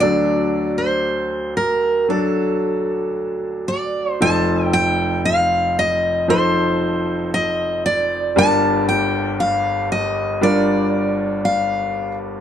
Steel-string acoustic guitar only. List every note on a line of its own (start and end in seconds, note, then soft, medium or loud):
0.00 0.75 D5 medium
0.78 1.53 C5 medium
1.57 2.06 A#4 medium
2.10 3.64 A4 medium
3.68 4.11 D5 medium
4.11 4.21 C5 medium
4.22 4.73 A5 loud
4.73 5.25 G5 medium
5.25 5.79 F5 medium
5.79 6.26 D#5 medium
6.30 7.29 C5 medium
7.34 7.85 D#5 medium
7.86 8.33 D5 medium
8.38 8.85 A5 loud
8.89 9.40 G5 medium
9.40 9.91 F5 medium
9.92 10.43 D#5 medium
10.43 11.45 D5 medium
11.45 12.17 F5 medium